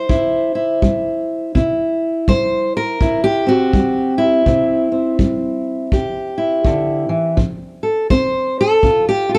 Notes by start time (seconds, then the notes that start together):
Already playing: C5
0.09 G2 E4, kick
0.55 E4
0.82 G3, kick
1.55 C3 E4, kick
2.28 G3 C5, kick
2.77 A#4
3.01 G2 E4, kick
3.24 G4
3.47 C4 F#4
3.73 G3, kick
4.18 E4
4.46 C3 C4, kick
4.92 C4
5.19 G3, kick
5.92 G2 G4, kick
6.38 E4
6.65 D3, kick
7.09 E3
7.37 F3, kick
7.83 A4
8.10 C4 C5, kick
8.61 A4
8.83 C3 F4, kick
9.09 G4
9.29 F4
9.35 A4